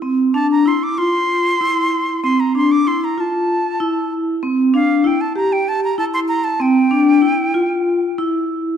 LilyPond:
<<
  \new Staff \with { instrumentName = "Flute" } { \time 7/8 \key c \mixolydian \tempo 4 = 96 r8 a''16 bes''16 c'''16 d'''16 c'''2 | c'''16 bes''16 c'''16 d'''16 c'''16 bes''16 a''4. r8 | r8 f''8 g''16 a''16 bes''16 g''16 a''16 bes''16 a''16 c'''16 bes''16 a''16 | g''2~ g''8 r4 | }
  \new Staff \with { instrumentName = "Vibraphone" } { \time 7/8 \key c \mixolydian c'8 d'8 e'8 f'4 e'4 | c'8 d'8 e'8 f'4 e'4 | c'8 d'8 e'8 g'4 e'4 | c'8 d'8 e'8 f'4 e'4 | }
>>